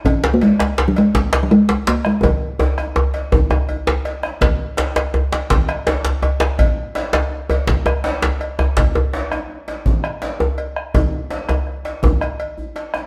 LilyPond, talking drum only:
\new Staff \with { instrumentName = "Talking drum" } { \clef bass \time 12/8 \key fis \major \tempo 4. = 110 cis'8. ais16 gis4~ gis16 fis16 gis4~ gis16 fis16 gis4 ais8 gis8 | fis1~ fis4 r4 | r1. | r1. |
r1. | r1. | }